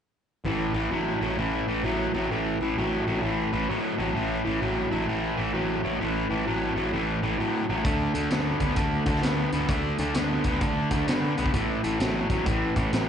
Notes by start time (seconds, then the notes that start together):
0.45 A1 A2 E3
0.74 A1 A2 E3
0.91 A1 A2 F#3
1.21 A1 A2 F#3
1.38 A1 A2 E3
1.68 A1 A2 E3
1.84 A1 A2 F#3
2.14 A1 A2 F#3
2.30 A1 A2 E3
2.60 A1 A2 E3
2.77 A1 A2 F#3
3.07 A1 A2 F#3
3.22 A1 A2 E3
3.52 A1 A2 E3
3.69 A2 F#3
3.98 A1 A2 F#3
4.14 A1 A2 E3
4.44 A1 A2 E3
4.61 A1 A2 F#3
4.91 A1 A2 F#3
5.08 A1 A2 E3
5.37 A1 A2 E3
5.53 A1 A2 F#3
5.83 A1 A2 F#3
6.00 A1 A2 E3
6.30 A1 A2 E3
6.46 A1 A2 F#3
6.75 A1 A2 F#3
6.93 A1 A2 E3
7.23 A1 A2 E3
7.38 A2 F#3
7.69 A1 A2 F#3
7.85 D2 D3 A3, kick, closed hi-hat
8.14 D2 D3 A3, closed hi-hat
8.30 D2 D3 B3, snare, closed hi-hat
8.60 D2 D3 B3, kick, closed hi-hat
8.76 D2 D3 A3, kick, closed hi-hat
9.06 D2 D3 A3, kick, closed hi-hat
9.16 snare
9.22 D2 D3 B3, snare, closed hi-hat
9.52 D2 D3 B3, closed hi-hat
9.68 D2 D3 A3, kick, closed hi-hat
9.98 D2 D3 A3, closed hi-hat
10.14 D2 D3 B3, snare, closed hi-hat
10.44 D2 D3 B3, kick, closed hi-hat
10.61 D2 D3 A3, kick, closed hi-hat
10.91 D2 D3 A3, kick, closed hi-hat
11.07 D3 B3, snare, closed hi-hat
11.37 B1 D3 B3, closed hi-hat
11.46 kick
11.54 A1 A2 E3, kick, closed hi-hat
11.83 A1 A2 E3, closed hi-hat
11.99 A1 A2 F#3, snare, closed hi-hat
12.30 A1 A2 F#3, kick, closed hi-hat
12.46 A1 A2 E3, kick, closed hi-hat
12.76 A1 A2 E3, kick, closed hi-hat
12.92 A1 A2 F#3, snare, closed hi-hat